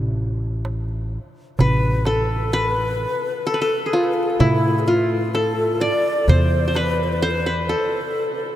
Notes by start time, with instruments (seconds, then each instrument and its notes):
Already playing: upright bass A1
0.65 darbuka tek
0.89 darbuka ka
1.59 upright bass A1, ney B4, qanun B4, darbuka dum
2.05 ney A4, qanun A4, darbuka tek
2.52 ney A#4, qanun B4
2.67 ney B4
3.47 ney A4, qanun A4
3.54 qanun B4
3.60 ney A4, qanun A4
3.86 qanun G#4
3.93 qanun F4, darbuka tek
4.03 ney B4
4.14 ney A4
4.23 ney G#4
4.30 ney A4
4.39 upright bass A2, qanun E4, ney E4, darbuka dum
4.64 darbuka ka
4.79 ney G#4
4.87 ney F4, qanun F4
5.34 ney A4, qanun A4, darbuka tek
5.58 darbuka ka
5.81 ney D5, qanun D5
6.28 upright bass E2, ney C5, qanun C5, darbuka dum
6.68 qanun C5
6.75 ney B4, qanun B4, darbuka tek
6.99 ney C5, darbuka ka
7.12 ney B4
7.22 ney A4, qanun C5, darbuka ka
7.31 ney B4
7.46 qanun B4
7.62 ney B4
7.68 ney A4, qanun A4, darbuka ka